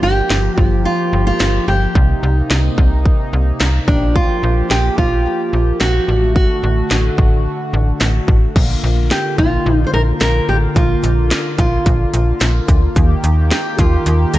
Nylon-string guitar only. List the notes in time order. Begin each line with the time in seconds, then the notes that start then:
0.03 G4
0.60 F4
0.85 F4
1.27 F4
1.68 G4
3.88 D4
4.15 F4
4.71 G4
4.98 F4
5.81 F#4
6.36 F#4
9.11 G4
9.39 F4
9.87 C5
9.94 A#4
10.21 A#4
10.49 G4
10.76 F4
11.59 F4
13.51 G4
13.79 F4
14.34 A#4